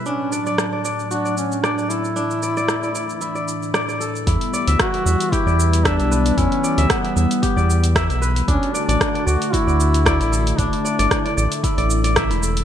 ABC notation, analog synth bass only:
X:1
M:4/4
L:1/16
Q:"Swing 16ths" 1/4=114
K:Em
V:1 name="Analog synth bass" clef=bass
z16 | z16 | E,, z2 D,, z2 E,, z2 E,,4 B,,,3 | E,, z2 D,, z2 E,, z2 E,,4 B,,,3 |
D,, z2 A,,, z2 D,, z2 D,,4 A,,,3 | A,,, z2 G,,, z2 A,,, z2 A,,,4 E,,,3 |]